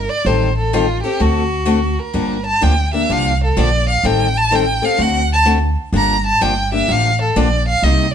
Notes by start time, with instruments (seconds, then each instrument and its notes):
Already playing: violin A#4
0.09 violin D5
0.25 upright bass A1, steel-string acoustic guitar D#3 G3 C4 G4 A4, violin C5
0.58 violin A4
0.73 steel-string acoustic guitar D#3 G3 C4 G4 A4, violin F4
1.03 steel-string acoustic guitar C4 G4 A4, violin G4
1.19 upright bass D2, steel-string acoustic guitar D3 A3 C4 F#4 A4, violin F#4
1.65 steel-string acoustic guitar D3 A3 C4 F#4 A4
1.99 violin A#4
2.13 upright bass G1, steel-string acoustic guitar D3 F3 A#3 D4 G4
2.46 violin A5
2.61 upright bass D2, steel-string acoustic guitar D3 F3 A#3 D4 G4, violin G5
2.93 steel-string acoustic guitar A#3 D4 G4, violin E5
3.09 upright bass C2, steel-string acoustic guitar D3 F3 A#3 D4 G4, violin F5
3.44 violin A4
3.57 upright bass A#1, steel-string acoustic guitar D3 F3 A#3 D4 G4, violin D5
3.89 violin F5
4.03 upright bass A1, steel-string acoustic guitar D#3 G3 C4 G4 A4, violin G5
4.37 violin A5
4.51 steel-string acoustic guitar D#3 G3 C4 G4 A4
4.55 violin G5
4.82 steel-string acoustic guitar C4 G4 A4, violin F5
4.97 upright bass D2, steel-string acoustic guitar D3 A3 C4 F#4 A4
5.01 violin F#5
5.33 violin A5
5.45 steel-string acoustic guitar D3 A3 C4 F#4 A4
5.93 upright bass G1, steel-string acoustic guitar D3 F3 A#3 D4 G4
5.97 violin A#5
6.27 violin A5
6.41 upright bass G1, steel-string acoustic guitar D3 F3 A#3 D4 G4, violin G5
6.72 steel-string acoustic guitar A#3 D4 G4, violin E5
6.88 upright bass A1, steel-string acoustic guitar D3 F3 A#3 D4 G4, violin F5
7.22 violin A4
7.36 upright bass A#1, steel-string acoustic guitar D3 F3 A#3 D4 G4, violin D5
7.68 violin F5
7.83 upright bass C2, steel-string acoustic guitar C3 G3 A#3 D#4 G4, violin D#5